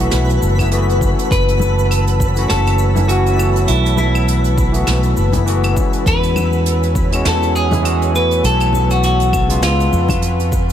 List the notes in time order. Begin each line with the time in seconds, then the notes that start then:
Already playing: E3 E4 B4 F#5 A5 B5 E6
0.00 A3 B3 F#4
0.11 B1, snare, closed hi-hat, cabasa
0.29 closed hi-hat, cabasa
0.42 F#1, cabasa
0.58 E3 A3 B3 E4, kick, closed hi-hat, cabasa, claves
0.71 E3 A3 B3 F#4, closed hi-hat, cabasa
0.89 closed hi-hat, cabasa
0.98 E3 A3, kick
1.02 C#4 F#4, cabasa
1.19 closed hi-hat, cabasa
1.31 F#1 B4 C#5, kick, closed hi-hat, cabasa
1.48 closed hi-hat, cabasa
1.60 high conga, cabasa
1.79 cabasa
1.91 closed hi-hat, cabasa, claves
2.07 closed hi-hat, cabasa
2.20 kick, cabasa
2.35 E3 A3 C#4 F#4, closed hi-hat, cabasa
2.50 F#1 A4, snare, closed hi-hat, cabasa
2.67 closed hi-hat, cabasa, claves
2.79 cabasa
2.95 E3 A3 C#4, closed hi-hat, high conga, low conga, cabasa
2.99 E4
3.08 E3 A3 C#4 F#4, closed hi-hat, cabasa
3.26 closed hi-hat, cabasa
3.36 E3 A3, cabasa, claves
3.41 B3 F#4
3.56 closed hi-hat, cabasa
3.67 B1 E4 B4, closed hi-hat, cabasa
3.86 closed hi-hat, cabasa
3.97 E4, high conga, cabasa
4.15 cabasa, claves
4.28 closed hi-hat, cabasa
4.44 closed hi-hat, cabasa
4.58 kick, cabasa
4.72 E3 A3 B3 F#4, closed hi-hat, cabasa
4.87 B1, snare, closed hi-hat, cabasa, claves
5.03 closed hi-hat, cabasa
5.17 F#1, cabasa
5.32 E3 A3 B3 E4, kick, closed hi-hat, high conga, low conga, cabasa
5.46 E3 A3 B3 F#4, closed hi-hat, cabasa
5.64 closed hi-hat, cabasa, claves
5.74 E3 G#3 C#5 F#5 G#5, kick, cabasa
5.79 C#4 F#4
5.93 closed hi-hat, cabasa
6.06 E2 B4, kick, closed hi-hat, cabasa
6.23 closed hi-hat, cabasa
6.36 high conga, cabasa, claves
6.53 cabasa
6.66 closed hi-hat, cabasa
6.83 closed hi-hat, cabasa
6.95 kick, cabasa
7.11 E3 G#3 C#4 F#4, closed hi-hat, cabasa, claves
7.25 E2 A4, snare, closed hi-hat, cabasa
7.43 closed hi-hat, cabasa
7.56 G#4, cabasa
7.70 E3 G#3 C#4 E4, closed hi-hat, high conga, low conga, cabasa
7.83 E3 G#3 C#4 F#4, closed hi-hat, cabasa, claves
8.02 closed hi-hat, cabasa
8.11 E3 A3
8.15 B3 F#4 B4, cabasa
8.31 closed hi-hat, cabasa
8.43 B1 A4 B4, closed hi-hat, cabasa
8.60 closed hi-hat, cabasa, claves
8.73 high conga, cabasa
8.91 F#4, closed hi-hat, cabasa
9.03 F#4, closed hi-hat, cabasa
9.20 closed hi-hat, cabasa
9.33 kick, cabasa, claves
9.47 C#3 G#3 B3 F4, closed hi-hat, cabasa
9.62 C#2 F4, snare, closed hi-hat, cabasa
9.80 closed hi-hat, cabasa
9.92 F2, cabasa
10.08 kick, closed hi-hat, high conga, low conga, cabasa, claves
10.22 closed hi-hat, cabasa
10.40 closed hi-hat, cabasa
10.52 kick, cabasa